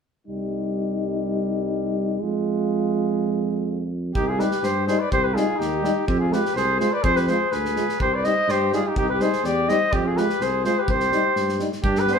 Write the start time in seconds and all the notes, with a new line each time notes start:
0.27 C2 G3 D#4
2.21 F2 G#3 F4
4.15 C2 D#4 G4, kick
4.28 F4 G#4
4.38 G3 D#4 G4 B4, snare
4.51 snare
4.60 G2 G4, snare
4.64 C5
4.87 G3 D#4 G#4 C5, snare
4.99 B4 D5
5.12 C2 G4 C5, kick
5.22 G4 B4
5.33 G3 D#4 F4 G#4
5.37 snare
5.56 D#2 D#4 G4
5.61 snare
5.82 G3 D#4, snare
6.07 F2 C4 G4, kick
6.19 F4 G#4
6.31 G#3 F4 G4 B4, snare
6.46 snare
6.55 C2 G#4 C5, snare
6.79 G#3 F4 G#4 C5, snare
6.92 B4 D5
7.02 F2 G#4 C5, kick
7.14 G4 B4, snare
7.28 G#3 F4 G#4 C5, snare
7.51 D2 G#4 B4, snare
7.65 snare
7.76 G#3 F4, snare
7.89 snare
8.00 C2 G4 C5, kick
8.14 B4 D5
8.24 G3 D#4 C5 D#5, snare
8.48 G2 G4 C5, snare
8.72 G3 D#4 F4 G#4, snare
8.86 D#4 G4
8.96 C2 D#4 G4, kick
9.10 G4 B4
9.19 G3 D#4 G#4 C5, snare
9.33 snare
9.43 E2 G4 D5, snare
9.69 G3 D#4 C5 D#5, snare
9.92 F2 C4 G4, kick
10.06 F4 G#4
10.15 G#3 F4 G4 B4, snare
10.30 snare
10.40 C2 G#4 C5, snare
10.64 G#3 F4 G#4 C5, snare
10.79 G4 B4
10.87 C2 C5, kick
10.92 G4
11.00 snare
11.12 G3 D#4, snare
11.36 G2, snare
11.49 snare
11.59 G3 D#4, snare
11.72 snare
11.83 G2 D4 G4, kick
11.95 G4 B4, snare
12.07 B3 D4, snare
12.13 G#4 C5